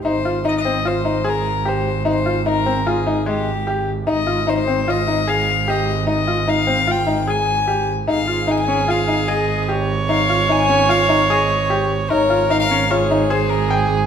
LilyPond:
<<
  \new Staff \with { instrumentName = "Violin" } { \time 5/4 \key aes \major \tempo 4 = 149 c''4 ees''16 ees''8. c''4 bes'4 c''4 | c''4 bes'4 aes'4 g'4. r8 | ees''4 c''16 c''8. ees''4 f''4 ees''4 | ees''4 f''4 g''4 aes''4. r8 |
f''4 aes''16 aes''8. f''4 ees''4 r4 | f''4 aes''16 aes''8. f''4 ees''4 r4 | des''4 f''16 f''8. des''4 c''8 bes'8 aes'4 | }
  \new Staff \with { instrumentName = "Viola" } { \time 5/4 \key aes \major r1 r4 | r1 r4 | r1 r4 | r1 r4 |
aes'1 des''4~ | des''1~ des''4 | bes'2 aes'2. | }
  \new Staff \with { instrumentName = "Grand piano" } { \time 5/4 \key aes \major ees'8 f'8 ees'8 c'8 f'8 ees'8 aes'4 g'4 | ees'8 f'8 ees'8 c'8 f'8 ees'8 aes4 g'4 | ees'8 f'8 ees'8 c'8 f'8 ees'8 aes'4 g'4 | ees'8 f'8 ees'8 c'8 f'8 ees'8 aes'4 g'4 |
ees'8 f'8 ees'8 des'8 f'8 ees'8 aes'4 g'4 | ees'8 f'8 ees'8 des'8 f'8 ees'8 aes'4 g'4 | ees'8 f'8 ees'8 des'8 f'8 ees'8 aes'4 g''4 | }
  \new Staff \with { instrumentName = "Double bass" } { \clef bass \time 5/4 \key aes \major aes,,1~ aes,,4~ | aes,,1~ aes,,4 | aes,,1~ aes,,4~ | aes,,1~ aes,,4 |
aes,,1~ aes,,4~ | aes,,1~ aes,,4 | aes,,1~ aes,,4 | }
>>